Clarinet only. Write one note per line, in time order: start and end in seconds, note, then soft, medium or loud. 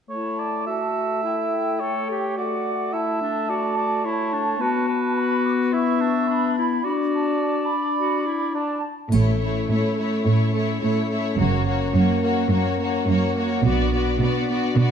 0.11 0.68 E4 soft
0.67 1.22 F#4 soft
1.23 1.82 E4 soft
1.81 2.09 A4 soft
2.10 2.39 G4 soft
2.37 2.95 F#4 soft
2.93 3.20 E4 soft
3.21 3.51 D4 soft
3.49 4.07 F#4 soft
4.05 4.34 E4 soft
4.33 4.63 D4 soft
4.61 5.75 F#4 soft
5.73 6.02 E4 medium
6.00 6.29 D4 medium
6.29 6.57 D4 medium
6.58 6.86 E4 soft
6.85 7.70 F#4 soft
7.98 8.28 F#4 soft
8.26 8.56 E4 soft
8.55 8.83 D4 soft